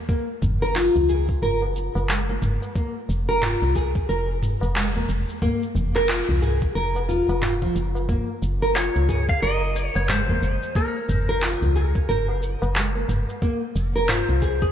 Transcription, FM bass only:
0.42 F#1
0.96 C#2
1.42 F#1
1.95 F#1
2.42 F#1
3.09 F1
3.62 C2
4.09 F1
4.62 F1
5.09 F1
5.75 F1
6.29 C2
6.75 F1
7.29 F1
7.75 F#1
8.42 F#1
8.96 C#2
9.42 F#1
9.96 F#1
10.42 F#1
11.09 F#1
11.62 C#2
12.09 F#1
12.62 F#1
13.09 F#1
13.76 F1
14.29 C2

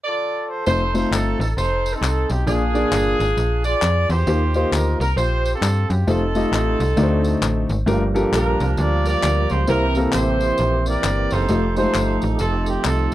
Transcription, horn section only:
0.04 F4 A4 D5
0.49 C5
0.67 D#4 A4 C5
0.96 C5
1.13 A4
1.40 A4
1.58 D#4 A4 C5
1.93 C4 D#4 A4
2.31 G4
2.47 D4 F4 G#4
3.65 F4 G#4 D5
4.10 F4 G4 C5
4.55 C5
4.72 A#4
5.01 A#4
5.17 F4 G4 C5
5.55 C4 F4 A4
5.90 G4
6.09 C4 D#4 A4
8.32 D4 F4 A#4
8.79 F4 A#4 D5
9.07 F4 A#4 D5
9.51 C5
9.69 E4 G4 A#4
9.97 A#4
10.14 E4 G4 C5
10.88 G4 A#4 D5
11.32 D#4 A4 C5
11.78 D#4 A4 C5
12.39 C4 D#4 A4
12.68 G4
12.86 A4

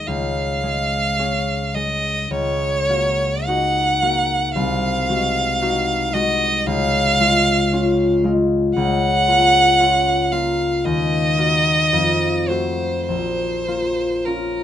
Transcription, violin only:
0.07 F5
1.75 D#5
2.31 C#5
3.46 F#5
4.56 F5
6.13 D#5
6.66 F5
8.75 F#5
10.32 F5
10.85 D#5
12.48 C5
13.07 C5
14.26 A#4

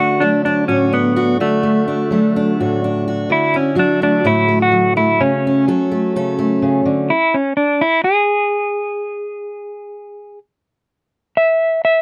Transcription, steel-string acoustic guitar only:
Already playing: D3 A3 D4
0.21 F#3 A3
0.46 D4
0.68 A2 F#4
0.93 D4
1.16 F#4
1.40 D3 F#4
1.63 A3
1.88 D4
2.11 F#3 A3
2.36 D4
2.60 A2 F#4
2.84 D4
3.08 F#4
3.30 D3
3.54 E4
3.75 F#3 F#4
4.02 A3
4.24 A2 A3
4.48 A3
4.71 F#3
4.97 A3
5.20 C#3
5.47 C#4
5.68 F#3 A4
5.92 A3
6.16 C#3 A4
6.39 A3
6.62 C#3
6.85 D3

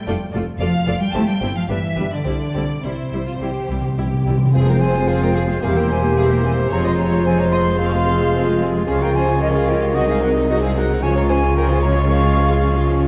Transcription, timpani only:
2.25 C3
2.32 C3
2.56 C3
2.64 C3
2.72 C3
2.79 C3
2.87 C3
2.95 C3
3.03 C3
3.19 C3
3.27 C3
3.36 C3
3.42 C3
3.51 C3
3.60 C3
3.67 C3
3.74 C3
3.82 C3
3.92 C3
3.99 C3
4.06 C3
4.14 C3
4.22 C3
4.30 C3
4.38 C3
4.45 C3
4.55 F2
6.72 F2

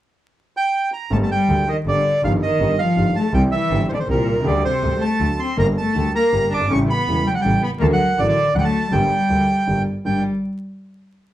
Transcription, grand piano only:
1.10 G1 G2 D3 G3 A#3 G4
1.49 D2 D3 G3 A#3 G4
1.86 G1 G2 D3 G3 A#3 G4
2.23 G1 G2 D#3 G3 A#3 G4
2.60 G1 G2 D#3 G3 A#3 G4
2.96 G1 G2 D#3 G3 A#3 G4
3.34 C2 C3 E3 G3 C4 G4
3.71 G1 G2 E3 G3 C4 G4
4.08 C2 C3 E3 G3 C4 G4
4.32 B1 C2
4.40 C#2 D3 G3
4.44 D2 A#3 G4
4.82 D2 D3 G3 A#3 G4
5.20 D2 D3 F#3 A3 F#4
5.57 G1 G2 D3 G3 A#3 G4
5.95 D2 D3 G3 A#3 G4
6.32 G1 G2 D3 G3 A#3 G4
6.57 F#1 G1
6.65 G#1
6.70 A1 A2 C#3 G3 A3 E4
7.07 E1 E2 C#3 G3 A3 E4
7.44 A1 A2 C#3 G3 A3 E4
7.81 D2 D3 F#3 A3 F#4
8.19 A1 A2 D3 F#3 A3 F#4
8.55 D2 D3 F#3 A3 F#4
8.92 G1 G2 D3 G3 A#3 G4
9.29 D2 D3 G3 A#3 G4
9.67 G1 G2 D3 G3 A#3 G4
10.05 G2 A#3 D4 G4

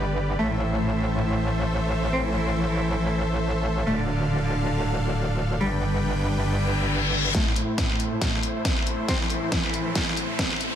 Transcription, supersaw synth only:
Already playing: G3 G4 B4 D5
0.39 A3 A4 C5 E5
3.87 D3 D4 F5
5.61 G3 D4 B4 G5
7.35 A2 A3 E4 C5

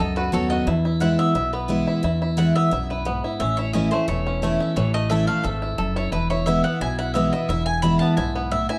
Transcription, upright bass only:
0.00 C#2
0.33 D#2
0.67 E2
1.34 B1
2.03 E2
2.71 B1
3.40 A1
4.08 E1
4.76 A1
5.44 G#1
5.78 F#1
6.12 E1
6.80 B1
7.48 E1
8.17 B1

